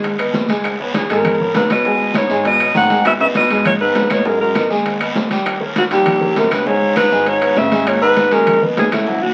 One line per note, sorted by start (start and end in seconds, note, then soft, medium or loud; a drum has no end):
0.00 0.31 D#2 medium
0.00 0.13 G#3 medium
0.00 0.14 G#4 medium
0.00 0.14 G#5 medium
0.00 long guiro medium
0.04 high bongo medium
0.04 high conga soft
0.04 high timbale medium
0.19 0.44 B3 medium
0.19 0.44 B4 medium
0.19 0.44 D#5 medium
0.19 high conga soft
0.19 high timbale medium
0.19 claves medium
0.34 1.04 C#2 medium
0.34 high bongo soft
0.34 low bongo medium
0.34 high conga medium
0.34 low timbale medium
0.34 short guiro medium
0.48 0.74 G#3 medium
0.48 0.74 G#4 medium
0.48 0.75 G#5 medium
0.48 high bongo soft
0.48 high conga medium
0.48 high timbale medium
0.48 short guiro medium
0.64 high bongo medium
0.64 high conga soft
0.64 high timbale medium
0.64 long guiro medium
0.64 claves medium
0.79 1.04 B3 medium
0.79 1.05 B4 medium
0.79 1.05 C#5 medium
0.79 high bongo soft
0.79 high conga soft
0.93 1.08 E2 medium
0.93 1.09 G#4 medium
0.93 high bongo medium
0.93 high conga medium
0.93 high timbale medium
0.93 low timbale medium
0.93 short guiro medium
1.09 1.51 G#1 medium
1.09 1.51 E2 medium
1.09 1.35 G#3 medium
1.09 1.35 G#4 medium
1.09 1.52 A#4 medium
1.09 1.35 G#5 medium
1.09 high bongo soft
1.09 high conga soft
1.09 high timbale medium
1.09 short guiro medium
1.25 high bongo medium
1.25 high conga soft
1.25 low conga medium
1.25 high timbale medium
1.25 long guiro medium
1.25 claves medium
1.40 1.64 B3 medium
1.40 1.65 B4 medium
1.40 1.65 C#5 medium
1.40 high conga soft
1.40 low conga medium
1.54 2.24 C#2 medium
1.54 1.69 G#2 medium
1.54 1.70 B4 medium
1.54 high bongo soft
1.54 low bongo medium
1.54 high conga medium
1.54 high timbale medium
1.54 low timbale medium
1.54 short guiro medium
1.70 2.12 B2 medium
1.70 1.83 B3 medium
1.70 1.83 B4 medium
1.70 1.83 C#5 medium
1.70 2.13 D#5 medium
1.70 high bongo soft
1.70 high conga medium
1.70 high timbale medium
1.70 short guiro medium
1.70 claves medium
1.85 2.10 G#3 medium
1.85 2.10 G#4 medium
1.85 2.10 G#5 medium
1.85 high bongo medium
1.85 high conga soft
1.85 long guiro medium
2.00 high bongo soft
2.00 high conga soft
2.14 2.43 G#2 medium
2.14 2.27 B3 medium
2.14 2.27 B4 medium
2.14 2.28 C#5 medium
2.14 2.44 C#5 medium
2.14 high bongo medium
2.14 high conga medium
2.14 high timbale loud
2.14 low timbale medium
2.14 short guiro medium
2.14 claves medium
2.29 2.72 G#1 medium
2.29 2.55 G#3 loud
2.29 2.55 G#4 medium
2.29 2.55 G#5 medium
2.29 high bongo soft
2.29 high conga soft
2.29 short guiro medium
2.45 2.73 B2 medium
2.45 2.74 D#5 loud
2.45 high bongo medium
2.45 high conga soft
2.45 high timbale medium
2.45 long guiro medium
2.60 2.85 B3 medium
2.60 2.85 B4 medium
2.60 2.86 C#5 medium
2.60 high conga soft
2.60 high timbale medium
2.60 claves medium
2.74 3.44 G#1 medium
2.74 3.03 D#3 medium
2.74 3.04 F#5 loud
2.74 high bongo soft
2.74 low bongo medium
2.74 high conga medium
2.74 low timbale medium
2.74 short guiro medium
2.90 3.15 G#3 medium
2.90 3.15 G#4 medium
2.90 3.15 G#5 medium
2.90 high bongo soft
2.90 high conga medium
2.90 high timbale medium
2.90 short guiro medium
3.05 3.12 B2 medium
3.05 3.13 E5 loud
3.05 high bongo medium
3.05 high conga soft
3.05 high timbale loud
3.05 long guiro medium
3.05 claves medium
3.20 3.27 C#3 medium
3.20 3.45 B3 medium
3.20 3.45 B4 medium
3.20 3.45 D#5 medium
3.20 3.27 E5 medium
3.20 high bongo soft
3.20 high conga soft
3.35 3.63 B2 medium
3.35 3.64 D#5 medium
3.35 high bongo medium
3.35 high conga loud
3.35 high timbale medium
3.35 low timbale medium
3.35 short guiro medium
3.49 3.92 G#2 loud
3.49 3.75 G#3 loud
3.49 3.75 G#4 medium
3.49 3.75 G#5 medium
3.49 high bongo soft
3.49 high conga soft
3.49 high timbale medium
3.49 short guiro medium
3.65 3.72 A#2 medium
3.65 3.73 C#5 medium
3.65 high bongo medium
3.65 high conga soft
3.65 low conga medium
3.65 high timbale medium
3.65 long guiro medium
3.65 claves medium
3.80 4.13 G#2 medium
3.80 4.05 B3 medium
3.80 4.05 B4 medium
3.80 4.13 B4 medium
3.80 4.05 D#5 medium
3.80 high conga soft
3.95 4.65 G#2 medium
3.95 high bongo soft
3.95 low bongo medium
3.95 high conga medium
3.95 high timbale medium
3.95 low timbale medium
3.95 short guiro medium
4.10 4.27 A#2 medium
4.10 4.22 B3 medium
4.10 4.23 B4 medium
4.10 4.28 C#5 medium
4.10 4.23 D#5 medium
4.10 high bongo soft
4.10 high conga medium
4.10 high timbale medium
4.10 short guiro medium
4.10 claves medium
4.25 4.40 F#2 medium
4.25 4.50 G#3 medium
4.25 4.50 G#4 medium
4.25 4.40 A#4 medium
4.25 4.50 G#5 medium
4.25 high bongo medium
4.25 high conga soft
4.25 long guiro medium
4.40 4.69 F#2 medium
4.40 4.69 A#4 medium
4.40 high bongo soft
4.40 high conga soft
4.55 4.68 B3 medium
4.55 4.68 B4 medium
4.55 4.68 D#5 medium
4.55 high bongo medium
4.55 high conga loud
4.55 high timbale medium
4.55 low timbale medium
4.55 short guiro medium
4.55 claves medium
4.70 5.12 D#2 medium
4.70 4.95 G#3 medium
4.70 4.95 G#4 medium
4.70 4.95 G#5 medium
4.70 high bongo soft
4.70 high conga soft
4.70 short guiro medium
4.86 high bongo medium
4.86 high conga soft
4.86 high timbale medium
4.86 long guiro medium
5.00 5.25 B3 medium
5.00 5.25 B4 medium
5.00 5.26 D#5 medium
5.00 high conga soft
5.00 high timbale medium
5.00 claves medium
5.15 5.85 D#2 medium
5.15 high bongo soft
5.15 low bongo medium
5.15 high conga medium
5.15 low timbale medium
5.15 short guiro medium
5.31 5.55 G3 medium
5.31 5.56 G4 medium
5.31 5.56 G5 medium
5.31 high bongo soft
5.31 high conga medium
5.31 high timbale medium
5.31 short guiro medium
5.45 high bongo medium
5.45 high conga soft
5.45 high timbale medium
5.45 long guiro medium
5.45 claves medium
5.60 5.85 A#3 medium
5.60 5.85 A#4 medium
5.60 5.86 C#5 medium
5.60 high bongo soft
5.60 high conga soft
5.76 5.83 D#2 medium
5.76 5.84 F#4 medium
5.76 high bongo medium
5.76 high conga medium
5.76 high timbale medium
5.76 low timbale medium
5.76 short guiro medium
5.91 6.33 A#1 loud
5.91 6.33 D#2 medium
5.91 6.16 G3 medium
5.91 6.16 G4 medium
5.91 6.34 G4 medium
5.91 6.16 G5 medium
5.91 high bongo soft
5.91 high conga soft
5.91 high timbale medium
5.91 short guiro medium
6.06 high bongo medium
6.06 high conga soft
6.06 low conga medium
6.06 high timbale loud
6.06 long guiro medium
6.06 claves medium
6.21 6.46 A#3 medium
6.21 6.46 A#4 medium
6.21 6.46 C#5 medium
6.21 high conga soft
6.21 low conga medium
6.36 7.06 C#2 medium
6.36 6.54 F#2 medium
6.36 6.54 A#4 medium
6.36 high bongo soft
6.36 low bongo medium
6.36 high conga medium
6.36 high timbale medium
6.36 low timbale medium
6.36 short guiro medium
6.51 6.69 G2 medium
6.51 6.64 B3 medium
6.51 6.64 B4 medium
6.51 6.69 B4 medium
6.51 6.64 C#5 medium
6.51 high bongo soft
6.51 high conga medium
6.51 high timbale medium
6.51 short guiro medium
6.51 claves medium
6.66 6.97 G#2 medium
6.66 6.91 G#3 medium
6.66 6.91 G#4 medium
6.66 6.96 C#5 loud
6.66 6.91 G#5 medium
6.66 high bongo medium
6.66 high conga soft
6.66 long guiro medium
6.81 high bongo soft
6.81 high conga soft
6.96 7.27 G#2 medium
6.96 7.09 B3 medium
6.96 7.29 B4 loud
6.96 7.09 B4 medium
6.96 7.09 C#5 medium
6.96 high bongo medium
6.96 high conga loud
6.96 high timbale medium
6.96 low timbale medium
6.96 short guiro medium
6.96 claves medium
7.11 7.53 G#1 medium
7.11 7.36 G#3 medium
7.11 7.36 G#4 medium
7.11 7.37 G#5 loud
7.11 high conga soft
7.11 short guiro medium
7.26 7.58 G#2 medium
7.26 7.59 C#5 loud
7.26 high bongo medium
7.26 high conga soft
7.26 high timbale medium
7.26 long guiro medium
7.41 7.66 B3 medium
7.41 7.66 B4 medium
7.41 7.66 C#5 medium
7.41 high conga soft
7.41 high timbale medium
7.41 claves medium
7.56 8.26 G#1 medium
7.56 7.88 C#3 loud
7.56 7.90 E5 loud
7.56 high bongo soft
7.56 low bongo medium
7.56 high conga medium
7.56 low timbale medium
7.56 short guiro medium
7.72 7.96 G#3 medium
7.72 7.97 G#4 medium
7.72 7.97 G#5 medium
7.72 high bongo soft
7.72 high conga medium
7.72 high timbale medium
7.72 short guiro medium
7.87 8.01 A#2 medium
7.87 8.02 C#5 loud
7.87 high bongo medium
7.87 high conga soft
7.87 high timbale loud
7.87 long guiro medium
7.87 claves medium
8.01 8.33 G#2 medium
8.01 8.26 B3 medium
8.01 8.26 B4 medium
8.01 8.35 B4 loud
8.01 8.27 D#5 medium
8.01 high conga soft
8.16 high bongo medium
8.16 high conga loud
8.16 high timbale medium
8.16 low timbale medium
8.16 short guiro medium
8.31 8.74 D#2 loud
8.31 8.62 F#2 medium
8.31 8.56 G#3 medium
8.31 8.57 G#4 medium
8.31 8.62 A#4 loud
8.31 8.57 G#5 medium
8.31 high bongo soft
8.31 high conga soft
8.31 high timbale medium
8.31 short guiro medium
8.47 high bongo medium
8.47 high conga soft
8.47 low conga medium
8.47 high timbale medium
8.47 long guiro medium
8.47 claves medium
8.62 8.86 B3 medium
8.62 8.87 B4 medium
8.62 8.87 D#5 medium
8.62 high conga soft
8.62 low conga medium
8.77 9.34 D#2 medium
8.77 8.93 D#2 medium
8.77 8.95 G#4 medium
8.77 high bongo soft
8.77 low bongo medium
8.77 high conga medium
8.77 high timbale medium
8.77 low timbale medium
8.77 short guiro medium
8.92 9.24 C#2 medium
8.92 9.04 A3 medium
8.92 9.24 E4 medium
8.92 9.05 A4 medium
8.92 9.05 C#5 medium
8.92 high bongo soft
8.92 high conga medium
8.92 high timbale loud
8.92 short guiro medium
8.92 claves medium
9.07 9.32 F#3 medium
9.07 9.32 F#4 medium
9.07 9.32 F#5 medium
9.07 high bongo medium
9.07 high conga soft
9.07 long guiro medium
9.22 9.34 D#2 medium
9.22 9.34 F#4 loud
9.22 high bongo soft
9.22 high conga soft